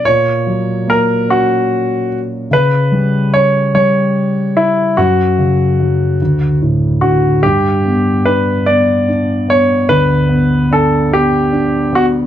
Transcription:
X:1
M:6/8
L:1/8
Q:3/8=49
K:F#phr
V:1 name="Grand piano"
c2 ^A F2 z | B2 c c2 E | F4 z F | [K:Glyd] G2 B d2 c |
B2 A G2 F |]
V:2 name="Grand piano" clef=bass
^A,, F, ^A, C3 | C, G, C G,3 | F,, C, F, D,, A,, D, | [K:Glyd] G,, B, D B, D B, |
D,, B, D B, D B, |]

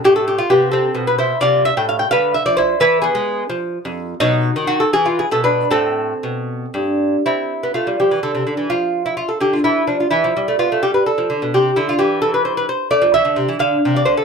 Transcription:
X:1
M:6/8
L:1/16
Q:3/8=85
K:Am
V:1 name="Lute"
G A G F [B,G]2 [CA]3 B [Ec]2 | [Fd]2 e g f g [Bf]2 e d [Ec]2 | [EB]2 [B,^G]4 z6 | [^F,^D]4 ^F A ^G =F G A [=DB]2 |
[CA]8- [CA]2 z2 | [K:C] E4 F2 G2 A4 | F3 E F A G F E2 D F | E4 F2 G B A4 |
G2 E F G2 A B c B c2 | [K:Am] d2 e4 f3 d c A |]
V:2 name="Lute" clef=bass
A,,4 C,4 B,,4 | C,3 A,,3 D,3 F,3 | E,3 ^G,3 F,3 F,,3 | B,,3 ^D,3 E,3 B,,3 |
A,,4 B,,4 G,,4 | [K:C] C3 B, A, G, F, E, D, C, D, E, | F,6 D,2 E,2 F,2 | E, F, G, A, B, A, G,3 F, D, B,, |
C,2 D,2 E,8 | [K:Am] A, F, E, D, C, E, D,2 C,2 D,2 |]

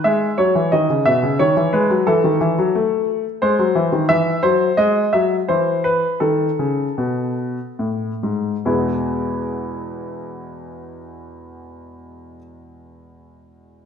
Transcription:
X:1
M:3/4
L:1/16
Q:1/4=81
K:E
V:1 name="Grand piano"
e2 c2 d2 e2 c2 B2 | A6 z2 =c4 | e2 =c2 d2 e2 c2 B2 | A6 z6 |
[E,,B,,G,B,E]12- | [E,,B,,G,B,E]12 |]
V:2 name="Grand piano" clef=bass
G,2 F, E, D, C, B,, C, D, E, G, F, | E, D, E, F, A,4 G, F, E, D, | E,2 F,2 G,2 F,2 E,4 | D,2 C,2 B,,4 A,,2 G,,2 |
z12 | z12 |]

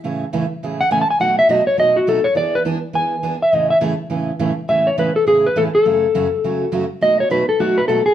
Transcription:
X:1
M:4/4
L:1/8
Q:"Swing" 1/4=206
K:A
V:1 name="Electric slide guitar"
z4 z f (3g a g | f e ^d c d F A c | d B z2 g3 e | ^d e z6 |
e c B A G B A A- | A6- A z | ^d c B A F B A G |]
V:2 name="Steel-string acoustic guitar"
[A,,C,E,A,CG] z [A,,C,E,A,CG] z [A,,C,E,A,CG] z [A,,C,E,A,CG] z | [B,,F,A,^DF] z [B,,F,A,DF] z [B,,F,A,DF] z [B,,F,A,DF] z | [E,B,DG] z [E,B,DG] z [E,B,DG] z [E,B,DG] z | [A,,C,E,A,CG] z [A,,C,E,A,CG] z [A,,C,E,A,CG] z [A,,C,E,A,CG] z |
[A,,C,E,A,CG] z [A,,C,E,A,CG] z [A,,C,E,A,CG] z [A,,C,E,A,CG] z | [F,,C,F,A,CF] z [F,,C,F,A,CF] z [F,,C,F,A,CF] z [F,,C,F,A,CF] z | [B,,F,A,^DF] z [B,,F,A,DF] z [B,,F,A,DF] z [B,,F,A,DF] z |]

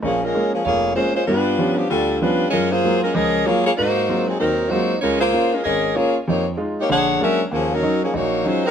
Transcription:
X:1
M:4/4
L:1/16
Q:"Swing" 1/4=192
K:Bbm
V:1 name="Saxophone section"
[F,B,DA]2 [A,DFB]4 [F,B,DA]2 [B,FAd]4 [A,DFc]2 [A,DFc]2 | [=G,=DF=B]6 [F,=B,D=G]2 [G,DF=A]4 [G,DFB]3 z | [A,DFB]2 [B,FAc]4 [A,DFB]2 [DABe]4 [B,FAd]2 [B,FAd]2 | [B,EGc]6 [G,CEA]2 [G,CEB]4 [B,EGc]3 z |
[A,DFB]2 [B,FAc]4 [A,DFB]2 [DABe]4 [B,FAd]2 z2 | [B,E=Gd]2 z4 [B,EGd]2 [=DA^c^f]4 [^C^FB=e]2 z2 | [F,B,DA]2 [G,DEB]4 [F,B,DA]2 [B,EGd]4 [A,DFc]2 [G,CEB]2 |]
V:2 name="Grand piano" clef=bass
B,,,4 [A,B,D]2 z2 F,,,4 [A,B,D]2 z2 | [=G,,=B,]4 [F,=G,B,^C]2 z2 =D,,4 [F,G,B,C]2 z2 | G,,4 [G,A,B,F]2 z2 [D,,F,]4 [G,A,B,F]2 z2 | A,,4 [G,A,B,CF]2 z2 [E,,E,]4 [G,A,B,CF]2 z2 |
D,,4 [B,DF]2 z2 A,,,4 [B,DF]2 z2 | [F,,F,]4 [A,EF]2 z2 [B,,,=D,]4 [^F,A,B,=D]2 z2 | E,,4 [G,DE]2 z2 B,,,4 [G,DE]2 z2 |]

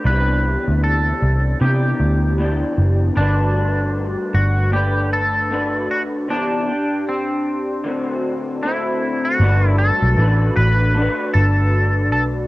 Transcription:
X:1
M:4/4
L:1/16
Q:"Swing 16ths" 1/4=77
K:G
V:1 name="Clean electric guitar"
B4 A4 G6 z2 | D6 F2 G2 A4 F2 | D4 C8 E3 F- | F2 A4 B4 A4 A2 |]
V:2 name="Clean electric guitar"
[C,E,B,DG]8 [E,B,DG]4 [E,B,DG]4 | [G,A,DFB]8 [A,DB]4 [A,DFB]4 | [C,E,B,DG]2 [DG]6 [D,A,CF]4 [D,A,CF]4 | [G,A,DFB]4 [A,DFB]4 [A,DFB]8 |]
V:3 name="Picked electric bass" clef=bass
C,,3 D,,3 C,,2 C,2 D,,4 F,,,2 | G,,,4- G,,, z G,,,8 z2 | z16 | G,,,3 B,,, A,,,2 A,,,3 z G,,,4 B,,,2 |]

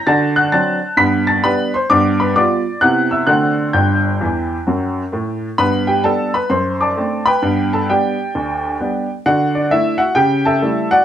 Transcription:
X:1
M:4/4
L:1/8
Q:"Swing" 1/4=131
K:G
V:1 name="Upright piano"
[aa'] [ff'] [aa']2 [bb'] [aa'] [Bb] [cc'] | [dd'] [Bb] [dd']2 [ff'] [ee'] [ff']2 | [gg']6- [gg'] z | [Bb] [Gg] [Aa] [Bb] [cc'] [dad']2 [Bgb]- |
[Bgb] [Aa] [Gdg]4- [Gdg] z | [Ff] [Dd] [Ee] [Ff] [Gg] [Aea]2 [Fdf] |]
V:2 name="Upright piano"
[D,F]2 [F,CD]2 [G,,B,]2 [G,B,D]2 | [G,,B,]2 [G,B,=F]2 [C,B,CE]2 [D,A,CD^F]2 | [G,,,G,,]2 [E,,E,]2 [F,,F,]2 [A,,A,]2 | [G,,B,]2 [G,B,D]2 F,,2 [A,CD]2 |
[G,,B,]2 [G,B,D]2 D,,2 [G,B,D]2 | D,2 [A,D]2 ^C,2 [G,A,E]2 |]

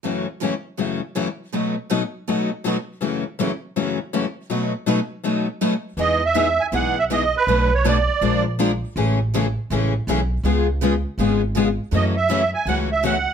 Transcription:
X:1
M:4/4
L:1/16
Q:"Swing" 1/4=161
K:F#dor
V:1 name="Accordion"
z16 | z16 | z16 | z16 |
d2 e4 g2 f2 e2 d2 B2- | B2 c2 =d6 z6 | z16 | z16 |
d2 e4 g2 f2 e2 f4 |]
V:2 name="Steel-string acoustic guitar"
[F,CEA]2 z2 [F,CEA] z3 [F,CEA]2 z2 [F,CEA] z3 | [B,,F,A,DFB]2 z2 [B,,F,A,DFB] z3 [B,,F,A,DFB]2 z2 [B,,F,A,DFB] z3 | [F,CEA]2 z2 [F,CEA] z3 [F,CEA]2 z2 [F,CEA] z3 | [B,,F,A,DFB]2 z2 [B,,F,A,DFB] z3 [B,,F,A,DFB]2 z2 [B,,F,A,DFB] z3 |
[E,G,B,DG]2 z2 [E,G,B,DG] z3 [E,G,B,DG]2 z2 [E,G,B,DG] z3 | [B,,F,A,=DFB]2 z2 [B,,F,A,DFB] z3 [^E,G,D^E^A]2 z2 [E,G,DEA] z3 | [E,G,CEA]2 z2 [E,G,CEA] z3 [E,G,CEA]2 z2 [E,G,CEA] z3 | [C,G,B,^EG]2 z2 [C,G,B,EG] z3 [C,G,B,EG]2 z2 [C,G,B,EG] z3 |
[F,CEA]2 z2 [F,CEA] z3 [F,CEA]2 z2 [F,CEA] z3 |]
V:3 name="Steel-string acoustic guitar"
[F,,C,E,A,CF]2 z2 [F,,C,E,A,CF] z3 [F,,C,E,A,CF]2 z2 [F,,C,E,A,CF] z3 | [B,,F,A,DF]2 z2 [B,,F,A,DF] z3 [B,,F,A,DF]2 z2 [B,,F,A,DF] z3 | [F,,C,E,A,CF]2 z2 [F,,C,E,A,CF] z3 [F,,C,E,A,CF]2 z2 [F,,C,E,A,CF] z3 | [B,,F,A,DF]2 z2 [B,,F,A,DF] z3 [B,,F,A,DF]2 z2 [B,,F,A,DF] z3 |
[E,B,DG]2 z2 [E,B,DG] z3 [E,B,DG]2 z2 [E,B,DG] z3 | [B,,F,A,=DF]2 z2 [B,,F,A,DF] z3 [^E,G,D^E^A]2 z2 [E,G,DEA] z3 | [C,E,A,CG]2 z2 [C,E,A,CG] z3 [C,E,A,CG]2 z2 [C,E,A,CG] z3 | [C,G,B,^EG]2 z2 [C,G,B,EG] z3 [C,G,B,EG]2 z2 [C,G,B,EG] z3 |
[C,E,A,CF]2 z2 [C,E,A,CF] z3 [C,E,A,CF]2 z2 [C,E,A,CF] z3 |]
V:4 name="Upright bass" clef=bass
z16 | z16 | z16 | z16 |
E,,8 B,,,8 | B,,,8 ^A,,,8 | A,,,8 A,,,4 B,,,4 | C,,8 G,,,8 |
F,,8 C,,8 |]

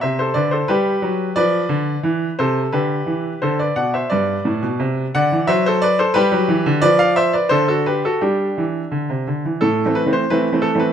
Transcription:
X:1
M:2/4
L:1/16
Q:1/4=88
K:G
V:1 name="Grand piano"
[ce] [Ac] [Bd] [Ac] [GB]4 | [Bd]6 [Ac]2 | [GB]4 [Ac] [Bd] [df] [ce] | [Bd]6 [df]2 |
[ce] [Ac] [Bd] [Ac] [GB]4 | [Bd] [d=f] [ce] [Bd] [Ac] [^FA] [GB] [FA] | [DG]4 z4 | [K:Am] A2 B c B2 A B |]
V:2 name="Grand piano" clef=bass
C,2 D,2 G,2 F,2 | =F,2 D,2 E,2 C,2 | D,2 E,2 D,2 B,,2 | G,,2 A,, B,, C,2 D, E, |
F,4 G, F, E, D, | =F,4 D,4 | G,2 E,2 D, C, D, E, | [K:Am] (3A,,2 [E,A,C]2 [E,A,C]2 (3[E,A,C]2 [E,A,C]2 [E,A,C]2 |]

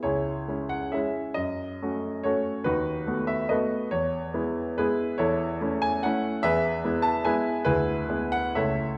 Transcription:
X:1
M:3/4
L:1/8
Q:1/4=141
K:E
V:1 name="Grand piano"
[EGc]3 f [Gce]2 | d4 [FAc]2 | [DFB]3 e [ABd]2 | c4 [EGB]2 |
[EAc]3 g f2 | [GBe]3 a [Beg]2 | [EGB]3 f [Ace]2 |]
V:2 name="Grand piano"
C,,2 [G,CE]2 [G,CE]2 | F,,2 [A,CF]2 [A,C]2 | D,,2 [A,B,F]2 [A,B,F]2 | E,,2 [G,B,E]2 [G,B,]2 |
E,,2 [A,CE]2 [A,CE]2 | E,,2 [G,B,E]2 [G,B,E]2 | =D,,2 [G,B,E]2 [C,,A,E]2 |]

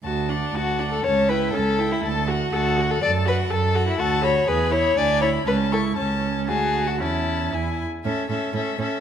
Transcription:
X:1
M:2/4
L:1/16
Q:1/4=121
K:D
V:1 name="Violin"
a2 f2 a2 f2 | a2 g2 a2 g2 | a2 f2 a2 f2 | a2 f2 a2 f2 |
[K:A] a2 b2 g2 b2 | g2 b2 a2 c'2 | a4 a4 | a4 g2 z2 |
e2 e2 e2 e2 |]
V:2 name="Violin"
z4 F3 A | c2 B2 A3 E | z4 F3 A | d2 B2 A3 E |
[K:A] F2 c2 B2 c2 | d2 c2 B2 A2 | z4 G3 F | E4 z4 |
A2 A2 A2 A2 |]
V:3 name="Viola"
F2 D2 F2 D2 | C2 E2 C2 E2 | A2 F2 A2 F2 | A2 F2 A2 F2 |
[K:A] A2 F2 G2 E2 | D2 E2 C2 E2 | C4 F4 | C4 E2 z2 |
C2 C2 C2 C2 |]
V:4 name="Cello" clef=bass
D,,4 D,,4 | C,,4 C,,4 | D,,4 D,,4 | F,,4 F,,4 |
[K:A] D,,4 E,,4 | D,,4 C,,4 | C,,4 D,,4 | E,,4 E,,2 z2 |
A,,2 A,,2 A,,2 A,,2 |]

